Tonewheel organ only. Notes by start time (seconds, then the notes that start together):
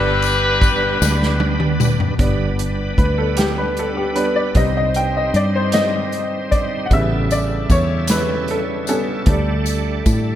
Already playing: G3 B3 D4 B4
2.18 G3 B3 D4 A#4
2.26 B4
4.55 G3 C4 D#4 C5
6.90 C#3 G3 E4 G#4
6.97 A4
9.27 G3 A3 D4 A4